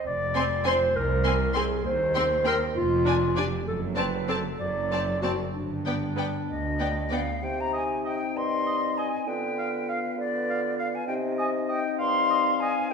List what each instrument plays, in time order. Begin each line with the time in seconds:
0.05 double bass section F1, cello section F2, clarinet D5
0.35 viola section C4, violin section G#5 C6
0.64 viola section C4, clarinet C5, violin section G#5 C6
0.95 double bass section C2, cello section C2, clarinet A#4
1.24 viola section C4, violin section G#5 C6
1.54 viola section C4, clarinet G#4, violin section G#5 C6
1.85 cello section D#2, double bass section D#2, clarinet C5
2.15 viola section C4, violin section G5 C6
2.44 viola section C4, clarinet A#4, violin section G5 C6
2.75 double bass section F1, cello section F2, clarinet F4
3.05 viola section D4, violin section D5 G#5
3.36 viola section D4, clarinet G4, violin section D5 G#5
3.66 double bass section F#1, cello section F#2, clarinet A4
3.96 viola section C4, clarinet B4, violin section D5 A5
4.27 viola section C4, clarinet A4, violin section D5 A5
4.59 double bass section F#1, cello section F#2, clarinet D5
4.91 viola section C4, violin section D5 A5
5.22 viola section C4, clarinet F#4, violin section D5 A5
5.52 double bass section G1, cello section G2, clarinet D4
5.86 viola section B3, violin section D5 G5
6.16 viola section B3, violin section D5 G5
6.49 double bass section D2, cello section D2, flute D#5
6.79 viola section B3, violin section D5 G5
7.10 viola section B3, violin section D5 G5, flute F5
7.42 bassoon C3, french horn section C4 D#4, flute G5
7.60 flute A#5
7.73 oboe D#5, flute G#5
8.05 oboe D#5, flute G5
8.36 bassoon G2, clarinet D#5, flute C6
8.67 oboe D#5
8.97 oboe D#5, flute G#5
9.27 bassoon D3, french horn section B3 F4, clarinet B4, flute G5
9.58 oboe F5
9.89 flute F5, oboe F5
10.18 bassoon D3, clarinet B4, flute D5
10.50 oboe F5
10.78 flute F5, oboe F5
10.95 flute G#5
11.07 bassoon C3, french horn section C4 D#4, clarinet D#5, flute G5
11.38 oboe D#5, flute G#5
11.68 oboe D#5, flute G5
11.98 bassoon G2, clarinet F5, flute C6
12.31 oboe D#5
12.60 oboe D#5, flute G#5
12.90 clarinet D#5, flute G5